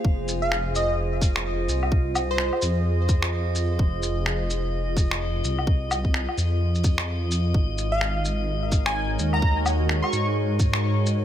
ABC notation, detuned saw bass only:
X:1
M:4/4
L:1/8
Q:"Swing 16ths" 1/4=128
K:Fphr
V:1 name="Detuned saw bass" clef=bass
F,,,6- F,,, C,,- | C,,2 z F,,4- F,, | F,,,6- F,,, C,,- | C,,2 z F,,4- F,, |
A,,,6- A,,, E,,- | E,,2 z A,,4- A,, |]